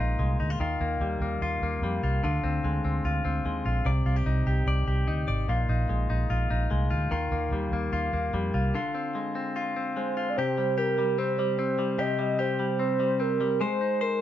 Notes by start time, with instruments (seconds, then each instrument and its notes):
Already playing: clean electric guitar A#2 G#3 F4
0.00 fingered electric bass A#1, clean electric guitar D#4
0.19 fingered electric bass C2, clean electric guitar G#3
0.40 fingered electric bass D2, clean electric guitar D#4
0.50 clean electric guitar F4
0.60 fingered electric bass D#2, clean electric guitar D#3 F4
0.80 fingered electric bass D#2, clean electric guitar A#3
1.00 fingered electric bass D#2, clean electric guitar G3
1.20 fingered electric bass D#2, clean electric guitar A#3
1.41 fingered electric bass D#2, clean electric guitar F4
1.61 fingered electric bass D#2, clean electric guitar A#3
1.82 fingered electric bass F2, clean electric guitar G3
2.03 fingered electric bass C2, clean electric guitar F4
2.23 fingered electric bass D2, clean electric guitar D3 F4
2.43 fingered electric bass D2, clean electric guitar C4
2.64 fingered electric bass D2, clean electric guitar G#3
2.84 fingered electric bass D2, clean electric guitar C4
3.04 fingered electric bass D2, clean electric guitar F4
3.25 fingered electric bass D2, clean electric guitar C4
3.45 fingered electric bass D#2, clean electric guitar G#3
3.65 fingered electric bass A#1, clean electric guitar F4
3.85 fingered electric bass C2, clean electric guitar C3 D5
4.05 fingered electric bass C2, clean electric guitar F4
4.16 clean electric guitar G4
4.26 fingered electric bass C2, clean electric guitar D#4
4.46 fingered electric bass C2, clean electric guitar G4
4.66 fingered electric bass C2, clean electric guitar D5
4.87 fingered electric bass C2, clean electric guitar G4
5.07 fingered electric bass D2, clean electric guitar D#4
5.27 fingered electric bass G#1, clean electric guitar D5
5.48 fingered electric bass A#1, clean electric guitar A#2 F4
5.69 fingered electric bass A#1, clean electric guitar D#4
5.89 fingered electric bass A#1, clean electric guitar G#3
6.10 fingered electric bass A#1, clean electric guitar D#4
6.30 fingered electric bass A#1, clean electric guitar F4
6.51 fingered electric bass A#1, clean electric guitar D#4
6.71 fingered electric bass C2, clean electric guitar G#3
6.91 fingered electric bass D2, clean electric guitar F4
7.11 fingered electric bass D#2, clean electric guitar D#3 F4
7.32 fingered electric bass D#2, clean electric guitar A#3
7.51 fingered electric bass D#2, clean electric guitar G3
7.71 fingered electric bass D#2, clean electric guitar A#3
7.92 fingered electric bass D#2, clean electric guitar F4
8.13 fingered electric bass D#2, clean electric guitar A#3
8.33 fingered electric bass F2, clean electric guitar G3
8.54 fingered electric bass C2, clean electric guitar F4
8.75 clean electric guitar D3 F4
8.95 clean electric guitar C4
9.15 clean electric guitar G#3
9.35 clean electric guitar C4
9.56 clean electric guitar F4
9.76 clean electric guitar C4
9.97 clean electric guitar G#3, soft synth lead C5
10.17 clean electric guitar F4
10.30 soft synth lead D5
10.37 clean electric guitar C3 G4, soft synth lead C5
10.58 clean electric guitar G3
10.78 clean electric guitar G4, soft synth lead A#4
10.98 clean electric guitar G3
11.18 clean electric guitar C4, soft synth lead C5
11.38 clean electric guitar G3, soft synth lead C5
11.58 clean electric guitar C4, soft synth lead C5
11.79 clean electric guitar G3
11.98 clean electric guitar C3 G4, soft synth lead D#5
12.19 clean electric guitar G3, soft synth lead D#5
12.39 clean electric guitar G4, soft synth lead C5
12.59 clean electric guitar G3
12.79 clean electric guitar C4, soft synth lead C5
13.00 clean electric guitar G3
13.20 clean electric guitar C4, soft synth lead A#4
13.41 clean electric guitar G3
13.61 clean electric guitar G#3 C5, soft synth lead C5
13.81 clean electric guitar D#4
14.01 soft synth lead A#4, clean electric guitar C5